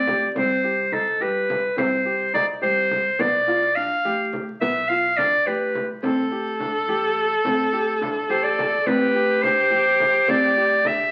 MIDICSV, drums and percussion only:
0, 0, Header, 1, 2, 480
1, 0, Start_track
1, 0, Tempo, 567108
1, 300, Time_signature, 5, 3, 24, 8
1, 9408, End_track
2, 0, Start_track
2, 0, Title_t, "Frame drum"
2, 60, Note_on_c, 9, 64, 69
2, 145, Note_off_c, 9, 64, 0
2, 304, Note_on_c, 9, 64, 65
2, 389, Note_off_c, 9, 64, 0
2, 780, Note_on_c, 9, 64, 59
2, 865, Note_off_c, 9, 64, 0
2, 1267, Note_on_c, 9, 64, 69
2, 1352, Note_off_c, 9, 64, 0
2, 1506, Note_on_c, 9, 64, 72
2, 1591, Note_off_c, 9, 64, 0
2, 1988, Note_on_c, 9, 64, 73
2, 2073, Note_off_c, 9, 64, 0
2, 2465, Note_on_c, 9, 64, 63
2, 2550, Note_off_c, 9, 64, 0
2, 2702, Note_on_c, 9, 64, 69
2, 2787, Note_off_c, 9, 64, 0
2, 3665, Note_on_c, 9, 64, 59
2, 3750, Note_off_c, 9, 64, 0
2, 3908, Note_on_c, 9, 64, 62
2, 3993, Note_off_c, 9, 64, 0
2, 4388, Note_on_c, 9, 64, 66
2, 4473, Note_off_c, 9, 64, 0
2, 4868, Note_on_c, 9, 64, 62
2, 4952, Note_off_c, 9, 64, 0
2, 5109, Note_on_c, 9, 64, 61
2, 5194, Note_off_c, 9, 64, 0
2, 5588, Note_on_c, 9, 64, 61
2, 5673, Note_off_c, 9, 64, 0
2, 6309, Note_on_c, 9, 64, 67
2, 6393, Note_off_c, 9, 64, 0
2, 6791, Note_on_c, 9, 64, 65
2, 6875, Note_off_c, 9, 64, 0
2, 7268, Note_on_c, 9, 64, 72
2, 7352, Note_off_c, 9, 64, 0
2, 7506, Note_on_c, 9, 64, 63
2, 7591, Note_off_c, 9, 64, 0
2, 7986, Note_on_c, 9, 64, 67
2, 8071, Note_off_c, 9, 64, 0
2, 8463, Note_on_c, 9, 64, 66
2, 8548, Note_off_c, 9, 64, 0
2, 8701, Note_on_c, 9, 64, 66
2, 8785, Note_off_c, 9, 64, 0
2, 9180, Note_on_c, 9, 64, 74
2, 9265, Note_off_c, 9, 64, 0
2, 9408, End_track
0, 0, End_of_file